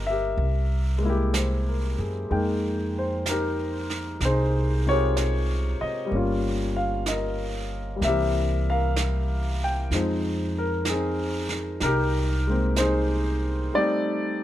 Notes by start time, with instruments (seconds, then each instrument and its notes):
Already playing: upright bass G1, grand piano A#3 C#4 F4 G4 A#4 C#5 D#5 G5
0.07 grand piano G4 A#4 E5
0.37 upright bass C2, brush sweep
0.98 grand piano G#3
1.02 grand piano A#3 E4
1.09 grand piano G4
1.34 grand piano C5, brush sweep, snare, hi-hat pedal
1.68 grand piano A#4
1.98 upright bass F#2, grand piano G#4
2.30 upright bass F2, grand piano G#3 A#3 D#4 G5, brush sweep
2.99 grand piano C5
3.26 grand piano A#4, brush sweep, snare, hi-hat pedal
3.30 grand piano D#4 G4
3.90 snare
4.20 upright bass C2, brush sweep, snare
4.25 grand piano D#4 G#4 C5
4.86 grand piano C3 F4 A#4 C#5
4.91 grand piano G4 G#4
5.17 brush sweep, snare, hi-hat pedal
5.81 grand piano D#5, muted upright bass stroke
6.06 grand piano G3 A#3
6.11 upright bass G1, grand piano C#4, brush sweep
6.16 grand piano F4
6.76 grand piano F5
7.06 grand piano D#5, brush sweep, snare, hi-hat pedal
7.10 grand piano A#4
7.96 grand piano G3
8.00 upright bass C2, grand piano A#3, brush sweep, snare
8.04 grand piano E3 C4 G4 A#4 E5
8.70 grand piano A#4 F5
8.96 brush sweep, snare, hi-hat pedal
9.64 grand piano G5
9.91 upright bass F2, grand piano F3 G#3 C4 D#4, brush sweep, snare
10.58 grand piano A#4
10.85 brush sweep, snare, hi-hat pedal
10.89 grand piano C4 D#4 G#4
11.49 snare
11.80 upright bass C2, grand piano D#4 A#4, brush sweep, snare
11.86 grand piano G4
12.47 grand piano G#3 A#3 C4
12.76 grand piano D#4 G#4 C5, brush sweep, snare, hi-hat pedal
13.74 grand piano G3 A3 C4 D#4 G4 D5